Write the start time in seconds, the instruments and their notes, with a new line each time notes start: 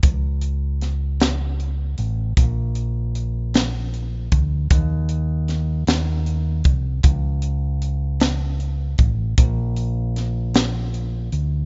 0.03 fingered electric bass C#2, kick, closed hi-hat
0.41 closed hi-hat
0.81 snare, closed hi-hat
1.20 snare, closed hi-hat
1.60 closed hi-hat
1.98 fingered electric bass A1, closed hi-hat
2.37 fingered electric bass A#1, kick, closed hi-hat
2.75 closed hi-hat
3.15 closed hi-hat
3.54 snare, closed hi-hat
3.94 closed hi-hat
4.32 fingered electric bass D2, kick, closed hi-hat
4.70 fingered electric bass D#2, kick, closed hi-hat
5.09 closed hi-hat
5.48 snare, closed hi-hat
5.87 fingered electric bass D#2, snare, closed hi-hat
6.26 closed hi-hat
6.64 fingered electric bass C2, kick, closed hi-hat
7.03 fingered electric bass C#2, kick, closed hi-hat
7.42 closed hi-hat
7.82 closed hi-hat
8.20 snare, closed hi-hat
8.60 closed hi-hat
8.98 fingered electric bass A1, kick, closed hi-hat
9.38 fingered electric bass A#1, kick, closed hi-hat
9.76 closed hi-hat
10.16 snare, closed hi-hat
10.54 snare, closed hi-hat
10.94 closed hi-hat
11.32 fingered electric bass D2, closed hi-hat